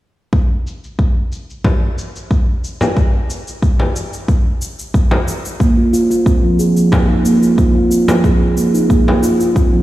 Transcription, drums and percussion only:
0.33 kick medium
0.33 shaker soft
0.67 shaker medium
0.84 shaker soft
0.99 kick medium
0.99 shaker soft
1.32 shaker medium
1.50 shaker soft
1.64 kick medium
1.64 frame drum medium
1.64 shaker soft
1.98 shaker medium
2.16 shaker soft
2.31 kick medium
2.31 shaker soft
2.64 shaker medium
2.81 frame drum medium
2.81 shaker soft
2.97 kick loud
2.97 shaker soft
3.30 shaker medium
3.48 shaker soft
3.62 kick medium
3.62 shaker soft
3.80 frame drum medium
3.96 shaker medium
4.13 shaker soft
4.28 kick medium
4.28 shaker soft
4.62 shaker medium
4.79 shaker soft
4.94 kick loud
4.94 shaker soft
5.11 frame drum medium
5.28 shaker medium
5.45 shaker soft
5.60 kick loud
5.60 shaker soft
5.94 shaker medium
6.11 shaker soft
6.26 kick loud
6.26 shaker soft
6.59 shaker medium
6.77 shaker soft
6.92 kick loud
6.92 frame drum loud
6.92 shaker soft
7.25 shaker medium
7.43 shaker soft
7.58 kick loud
7.58 shaker soft
7.91 shaker medium
8.08 frame drum medium
8.08 shaker soft
8.24 kick loud
8.24 shaker soft
8.57 shaker medium
8.75 shaker soft
8.90 kick medium
8.90 shaker soft
9.08 frame drum medium
9.23 shaker medium
9.40 shaker soft
9.56 kick loud
9.56 shaker soft

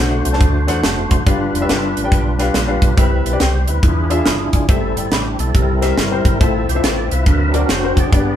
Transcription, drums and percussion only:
0.25 closed hi-hat medium
0.33 snare soft
0.41 kick loud
0.41 closed hi-hat medium
0.68 snare soft
0.68 closed hi-hat medium
0.84 snare loud
0.84 closed hi-hat medium
1.11 kick medium
1.11 closed hi-hat medium
1.27 kick loud
1.27 closed hi-hat medium
1.55 closed hi-hat medium
1.69 snare loud
1.69 closed hi-hat medium
1.97 closed hi-hat medium
2.12 kick loud
2.12 closed hi-hat medium
2.39 snare soft
2.39 closed hi-hat medium
2.54 snare loud
2.54 closed hi-hat medium
2.82 kick medium
2.82 closed hi-hat medium
2.98 kick loud
2.98 closed hi-hat medium
3.26 closed hi-hat medium
3.40 snare loud
3.40 closed hi-hat medium
3.68 closed hi-hat medium
3.83 kick loud
3.83 closed hi-hat medium
4.11 closed hi-hat medium
4.26 snare loud
4.26 closed hi-hat medium
4.53 kick medium
4.53 closed hi-hat medium
4.69 kick loud
4.69 closed hi-hat medium
4.97 closed hi-hat medium
5.12 snare loud
5.12 closed hi-hat medium
5.39 closed hi-hat medium
5.55 kick loud
5.55 closed hi-hat medium
5.82 snare soft
5.82 closed hi-hat medium
5.98 snare loud
5.98 closed hi-hat medium
6.25 kick medium
6.25 closed hi-hat medium
6.41 kick loud
6.41 closed hi-hat medium
6.69 closed hi-hat medium
6.84 snare loud
6.84 closed hi-hat medium
7.11 closed hi-hat medium
7.26 kick loud
7.26 closed hi-hat medium
7.54 closed hi-hat medium
7.69 snare loud
7.69 closed hi-hat medium
7.97 kick medium
7.97 closed hi-hat medium
8.13 kick loud
8.13 closed hi-hat medium

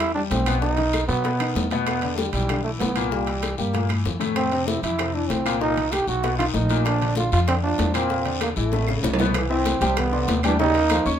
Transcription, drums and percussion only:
0.00 high bongo medium
0.00 high conga soft
0.00 high timbale medium
0.00 claves medium
0.16 high conga soft
0.31 high bongo medium
0.31 low bongo medium
0.31 high conga medium
0.31 high timbale medium
0.31 short guiro medium
0.46 high conga soft
0.46 high timbale medium
0.46 short guiro medium
0.46 claves medium
0.62 high bongo medium
0.62 high conga soft
0.62 long guiro medium
0.77 high bongo soft
0.77 high conga soft
0.77 high timbale medium
0.93 high bongo medium
0.93 high conga medium
0.93 high timbale medium
0.93 short guiro medium
0.93 claves medium
1.09 short guiro medium
1.24 high bongo medium
1.24 high conga soft
1.24 high timbale medium
1.24 long guiro medium
1.40 high bongo soft
1.40 high conga soft
1.40 high timbale medium
1.40 claves medium
1.55 high bongo medium
1.55 low bongo medium
1.55 high conga medium
1.55 low timbale medium
1.55 short guiro medium
1.71 high bongo soft
1.71 high conga medium
1.71 high timbale medium
1.71 short guiro medium
1.87 high bongo medium
1.87 high conga soft
1.87 high timbale medium
1.87 long guiro medium
1.87 claves medium
2.02 high conga soft
2.02 high timbale medium
2.18 high bongo medium
2.18 high conga medium
2.18 short guiro medium
2.33 high conga soft
2.33 high timbale medium
2.33 short guiro medium
2.49 high bongo medium
2.49 high conga soft
2.49 high timbale medium
2.49 long guiro medium
2.49 claves medium
2.64 high conga soft
2.80 high bongo medium
2.80 low bongo medium
2.80 high conga medium
2.80 high timbale medium
2.80 low timbale medium
2.80 short guiro medium
2.96 high conga soft
2.96 high timbale medium
2.96 short guiro medium
2.96 claves medium
3.11 high bongo medium
3.11 high conga soft
3.11 long guiro medium
3.27 high bongo soft
3.27 high conga soft
3.27 high timbale medium
3.42 high bongo medium
3.42 high conga medium
3.42 high timbale medium
3.42 short guiro medium
3.42 claves medium
3.58 high conga soft
3.58 short guiro medium
3.73 high bongo medium
3.73 high conga medium
3.73 high timbale medium
3.73 long guiro medium
3.89 high bongo soft
3.89 high conga medium
3.89 high timbale medium
3.89 claves medium
4.05 high bongo medium
4.05 low bongo medium
4.05 low conga medium
4.05 short guiro medium
4.20 high bongo soft
4.20 low conga medium
4.20 high timbale medium
4.20 short guiro medium
4.36 high bongo medium
4.36 high conga soft
4.36 high timbale medium
4.36 long guiro medium
4.36 claves medium
4.52 high conga soft
4.52 high timbale medium
4.68 high bongo medium
4.68 high conga loud
4.68 short guiro medium
4.83 high conga soft
4.83 high timbale medium
4.83 short guiro medium
4.99 high bongo medium
4.99 high conga soft
4.99 high timbale medium
4.99 long guiro medium
4.99 claves medium
5.15 high conga soft
5.30 high bongo medium
5.30 low bongo medium
5.30 high conga medium
5.30 high timbale medium
5.30 short guiro medium
5.46 high conga soft
5.46 high timbale medium
5.46 short guiro medium
5.46 claves medium
5.61 high bongo medium
5.61 high conga soft
5.61 long guiro medium
5.77 high bongo soft
5.77 high conga soft
5.77 high timbale medium
5.92 high bongo medium
5.92 high conga medium
5.92 high timbale medium
5.92 short guiro medium
5.92 claves medium
6.07 high conga soft
6.07 short guiro medium
6.23 high bongo medium
6.23 high conga soft
6.23 high timbale medium
6.23 long guiro medium
6.38 high bongo soft
6.38 high conga soft
6.38 high timbale medium
6.38 claves medium
6.54 high bongo medium
6.54 low bongo medium
6.54 high conga medium
6.54 short guiro medium
6.69 high bongo soft
6.69 high conga medium
6.69 high timbale medium
6.69 short guiro medium
6.85 high bongo medium
6.85 high conga soft
6.85 high timbale medium
6.85 long guiro medium
6.85 claves medium
7.00 high conga soft
7.00 high timbale medium
7.15 high bongo medium
7.15 high conga medium
7.15 short guiro medium
7.31 high conga soft
7.31 high timbale medium
7.31 short guiro medium
7.47 high bongo medium
7.47 high conga soft
7.47 high timbale medium
7.47 long guiro medium
7.47 claves medium
7.63 high conga soft
7.78 high bongo medium
7.78 low bongo medium
7.78 high conga medium
7.78 high timbale medium
7.78 low timbale medium
7.78 short guiro medium
7.94 high conga soft
7.94 high timbale medium
7.94 short guiro medium
7.94 claves medium
8.09 high bongo medium
8.09 high conga soft
8.09 long guiro medium
8.25 high bongo soft
8.25 high conga soft
8.25 high timbale medium
8.41 high bongo medium
8.41 high conga medium
8.41 high timbale medium
8.41 short guiro medium
8.41 claves medium
8.56 high conga soft
8.56 short guiro medium
8.72 high bongo medium
8.72 high conga soft
8.72 high timbale medium
8.72 long guiro medium
8.82 high timbale medium
8.88 high bongo medium
8.88 high conga soft
8.88 claves medium
9.03 low bongo medium
9.03 high conga medium
9.03 low timbale medium
9.03 short guiro medium
9.14 low timbale loud
9.19 low bongo medium
9.19 high conga medium
9.19 short guiro medium
9.25 low timbale medium
9.34 high bongo medium
9.34 high conga soft
9.34 high timbale medium
9.34 long guiro medium
9.34 claves medium
9.50 high bongo soft
9.50 high conga soft
9.65 high bongo medium
9.65 high conga loud
9.65 high timbale medium
9.65 short guiro medium
9.81 high conga medium
9.81 high timbale medium
9.81 short guiro medium
9.97 high bongo medium
9.97 high conga soft
9.97 low conga medium
9.97 high timbale medium
9.97 long guiro medium
9.97 claves medium
10.13 high bongo soft
10.13 high conga soft
10.28 high bongo medium
10.28 low bongo medium
10.28 high conga medium
10.28 high timbale medium
10.28 short guiro medium
10.43 high bongo soft
10.43 high conga medium
10.43 high timbale medium
10.43 short guiro medium
10.43 claves medium
10.59 high bongo medium
10.59 high conga soft
10.59 long guiro medium
10.75 high conga soft
10.75 high timbale medium
10.90 high bongo medium
10.90 high conga medium
10.90 high timbale medium
10.90 short guiro medium
10.90 claves medium
11.06 high bongo soft
11.06 high conga soft
11.06 short guiro medium

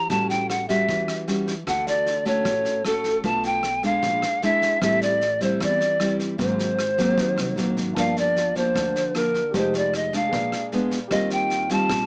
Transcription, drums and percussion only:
0.10 kick medium
0.10 snare soft
0.30 snare soft
0.50 cross-stick medium
0.50 snare soft
0.69 kick soft
0.69 snare soft
0.89 kick medium
0.89 snare soft
1.08 cross-stick medium
1.08 snare soft
1.28 snare soft
1.47 kick soft
1.47 snare soft
1.67 kick medium
1.67 cross-stick medium
1.67 snare soft
1.87 snare soft
2.06 snare soft
2.26 kick soft
2.26 snare soft
2.45 kick medium
2.45 cross-stick medium
2.45 snare soft
2.65 snare soft
2.85 cross-stick medium
2.85 snare soft
3.04 kick soft
3.04 snare soft
3.24 kick medium
3.24 snare soft
3.44 snare soft
3.63 cross-stick medium
3.63 snare soft
3.83 kick soft
3.83 snare soft
4.02 kick medium
4.02 snare soft
4.22 cross-stick medium
4.22 snare soft
4.42 snare soft
4.62 kick soft
4.62 snare soft
4.82 kick medium
4.82 cross-stick medium
4.82 snare soft
5.02 snare soft
5.21 snare soft
5.41 kick soft
5.41 snare soft
5.60 kick medium
5.60 cross-stick medium
5.60 snare soft
5.80 snare soft
6.00 cross-stick medium
6.00 snare soft
6.19 kick soft
6.19 snare soft
6.39 kick medium
6.39 snare soft
6.59 snare soft
6.79 cross-stick medium
6.79 snare soft
6.98 kick soft
6.98 snare soft
7.18 kick medium
7.18 snare soft
7.38 cross-stick medium
7.38 snare soft
7.58 snare soft
7.77 kick soft
7.77 snare soft
7.97 kick medium
7.97 cross-stick medium
7.97 snare soft
8.17 snare soft
8.36 snare soft
8.56 kick soft
8.56 snare soft
8.76 kick medium
8.76 cross-stick medium
8.76 snare soft
8.96 snare soft
9.15 cross-stick medium
9.15 snare soft
9.34 kick soft
9.34 snare soft
9.54 kick medium
9.54 snare soft
9.74 snare soft
9.94 cross-stick medium
9.94 snare soft
10.13 kick soft
10.13 snare soft
10.33 kick medium
10.33 snare soft
10.52 cross-stick medium
10.52 snare soft
10.72 snare soft
10.91 kick soft
10.91 snare soft
11.11 kick medium
11.11 cross-stick medium
11.11 snare soft
11.30 snare soft
11.50 snare soft
11.70 kick soft
11.70 snare soft
11.89 kick medium
11.89 cross-stick medium
11.89 snare soft

